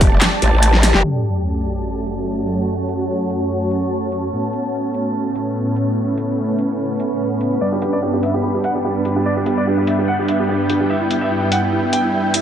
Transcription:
Already playing: wobble bass E1, ambient pad G4 D5 A5
0.01 kick, open hi-hat
0.22 snare, clap, closed hi-hat
0.42 wobble bass A1, closed hi-hat
0.53 wobble bass A1
0.63 closed hi-hat
0.74 snare
0.83 snare, open hi-hat
0.94 wobble bass F#1, brass ensemble G3 D4 G4, snare
1.04 supersaw synth F#2 F#3 A3 C#4, ambient pad F#4, crash, sub drop
1.24 closed hi-hat
1.37 ambient pad C#5
1.65 closed hi-hat
2.06 closed hi-hat
2.47 closed hi-hat
2.89 closed hi-hat
3.30 closed hi-hat
3.71 closed hi-hat
4.12 closed hi-hat
4.33 supersaw synth A2 A3 B3, ambient pad C#4
4.45 ambient pad B4
4.53 closed hi-hat
4.94 closed hi-hat
5.35 closed hi-hat
5.76 closed hi-hat
6.17 closed hi-hat
6.59 closed hi-hat
7.00 closed hi-hat
7.41 closed hi-hat
7.61 supersaw synth G2 G3 D4, ambient pad D4, grand piano D5
7.72 grand piano G4
7.82 grand piano G4, closed hi-hat
7.93 grand piano D5
8.02 grand piano G4
8.07 ambient pad G5
8.13 grand piano G4
8.23 grand piano E5, closed hi-hat
8.34 grand piano G4
8.43 grand piano G4
8.54 grand piano G4
8.64 grand piano F#5, closed hi-hat
8.75 grand piano G4
8.85 grand piano G4
9.05 grand piano G4, closed hi-hat
9.16 grand piano G4
9.26 grand piano D5
9.37 grand piano G4
9.46 grand piano G4, closed hi-hat
9.57 grand piano D5
9.67 grand piano G4
9.78 grand piano G4
9.87 grand piano E5, closed hi-hat
9.98 grand piano G4
10.08 grand piano F#5
10.19 grand piano G4
10.28 grand piano E5, closed hi-hat
10.39 grand piano G4
10.49 grand piano G4
10.69 grand piano G4, closed hi-hat
10.80 grand piano G4
10.90 ambient pad G3, supersaw synth E4, grand piano E5
10.95 ambient pad E4
11.01 grand piano E4
11.10 grand piano E4, closed hi-hat
11.21 grand piano E5
11.31 grand piano E4
11.42 grand piano E4
11.51 grand piano F#5, closed hi-hat
11.62 grand piano E4
11.72 grand piano E4
11.83 grand piano E4
11.93 grand piano G5, closed hi-hat
12.04 grand piano E4
12.13 grand piano E4
12.34 grand piano E4, closed hi-hat

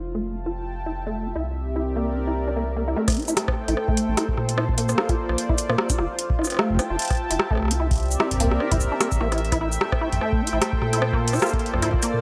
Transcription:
Already playing: sub bass F1, analog synth pad F4 A4 C5 D5
0.00 analog synth pad E5
0.09 analog synth pad A5
0.15 acid bass A3
0.24 analog synth pad G5
0.35 acid bass F4
0.46 acid bass F4
0.86 acid bass E4
1.06 acid bass A3
1.27 acid bass F4
1.35 sub bass C2, analog synth pad C4, acid bass E4
1.40 analog synth pad G4
1.65 analog synth pad D5
1.70 analog synth pad A#4
1.76 acid bass E4
1.96 acid bass A#3
2.16 acid bass E4
2.27 acid bass E4
2.47 acid bass D4
2.56 acid bass A#3
2.76 acid bass A#3
2.88 acid bass E4
2.97 acid bass A3, analog synth pad A3
3.05 analog synth pad A4, kick, cross-stick, closed hi-hat
3.10 analog synth pad C5, closed hi-hat
3.12 closed hi-hat
3.14 acid bass E4, analog synth pad G5, closed hi-hat
3.17 closed hi-hat
3.19 closed hi-hat
3.22 closed hi-hat
3.25 acid bass E4, closed hi-hat, shaker
3.37 cross-stick, closed hi-hat
3.48 kick, cross-stick
3.68 sub bass A1, acid bass E4, closed hi-hat
3.77 cross-stick
3.88 acid bass A3, kick
3.97 closed hi-hat
4.08 sub bass A1, acid bass E4
4.17 acid bass E4, cross-stick, closed hi-hat
4.29 kick
4.37 sub bass A#2, cross-stick
4.49 closed hi-hat
4.58 analog synth pad A#3, acid bass E4, cross-stick
4.65 analog synth pad F4, kick
4.78 acid bass A#3, analog synth pad D5, closed hi-hat
4.89 cross-stick, shaker
4.98 acid bass F4, cross-stick
5.09 acid bass F4, kick, closed hi-hat
5.29 sub bass A#1, cross-stick
5.38 closed hi-hat
5.49 acid bass E4, kick
5.58 closed hi-hat, shaker
5.69 sub bass A#2, acid bass A#3, cross-stick
5.78 cross-stick
5.90 acid bass F4, kick, closed hi-hat, shaker
5.98 sub bass F1, acid bass F4, cross-stick
6.19 closed hi-hat
6.30 analog synth pad E5 G5, kick
6.39 acid bass E4, cross-stick
6.42 cross-stick
6.44 cross-stick, shaker
6.47 cross-stick
6.50 cross-stick, closed hi-hat
6.52 cross-stick
6.54 cross-stick
6.57 cross-stick
6.59 acid bass A3, analog synth pad A5, cross-stick
6.70 kick
6.72 kick
6.75 kick
6.77 acid bass F4, kick, cross-stick, closed hi-hat
6.90 sub bass F1, acid bass F4
6.99 closed hi-hat
7.02 closed hi-hat
7.05 closed hi-hat
7.08 cross-stick, closed hi-hat
7.10 kick, closed hi-hat
7.15 closed hi-hat
7.17 closed hi-hat
7.31 sub bass F1, acid bass E4, closed hi-hat
7.39 cross-stick
7.51 acid bass A3, kick, cross-stick
7.53 cross-stick
7.55 cross-stick
7.57 sub bass C2, cross-stick
7.60 cross-stick
7.62 cross-stick
7.65 cross-stick
7.68 acid bass F4, cross-stick, closed hi-hat
7.80 analog synth pad C4 G4, acid bass E4
7.88 analog synth pad D5, kick, closed hi-hat
7.93 closed hi-hat
7.95 closed hi-hat
7.98 closed hi-hat
8.00 closed hi-hat
8.03 closed hi-hat
8.06 closed hi-hat
8.08 closed hi-hat, shaker
8.13 analog synth pad A#4
8.20 acid bass E4, cross-stick
8.31 kick, closed hi-hat
8.33 kick
8.37 acid bass A#3, kick, closed hi-hat
8.40 kick
8.44 kick
8.47 kick
8.51 sub bass C2, cross-stick
8.60 acid bass E4, cross-stick
8.72 acid bass E4, kick, closed hi-hat
8.74 kick
8.77 kick
8.80 kick, shaker
8.84 kick
8.87 kick
8.92 acid bass D4
9.00 acid bass A#3, cross-stick, closed hi-hat
9.12 sub bass G1, kick, shaker
9.21 sub bass A1, acid bass A#3, cross-stick
9.32 acid bass E4, cross-stick, closed hi-hat
9.38 analog synth pad A3, closed hi-hat
9.45 closed hi-hat
9.50 acid bass E4, analog synth pad G5, kick, cross-stick, closed hi-hat
9.55 analog synth pad A4
9.61 acid bass E4
9.72 analog synth pad C5, shaker
9.81 cross-stick
9.92 kick, cross-stick
10.01 acid bass E4
10.12 sub bass A1, closed hi-hat, mid tom
10.21 acid bass A3, cross-stick
10.33 kick
10.41 acid bass E4
10.47 closed hi-hat
10.53 sub bass A1, acid bass E4
10.62 cross-stick, closed hi-hat
10.73 kick
10.82 sub bass A#2, cross-stick
10.93 acid bass E4, closed hi-hat
11.02 analog synth pad A#3, cross-stick
11.09 acid bass A#3, analog synth pad F4, kick
11.28 closed hi-hat
11.33 acid bass F4, cross-stick, shaker
11.35 shaker
11.39 acid bass F4, cross-stick, shaker
11.42 shaker
11.46 shaker
11.49 shaker
11.53 kick, closed hi-hat
11.59 analog synth pad D5, closed hi-hat
11.66 closed hi-hat
11.74 sub bass A#1, cross-stick, mid tom
11.76 mid tom
11.78 mid tom
11.80 acid bass E4, closed hi-hat, mid tom
11.82 mid tom
11.85 mid tom
11.88 mid tom
11.91 kick, mid tom
12.03 acid bass A#3, closed hi-hat, shaker
12.14 sub bass A#2

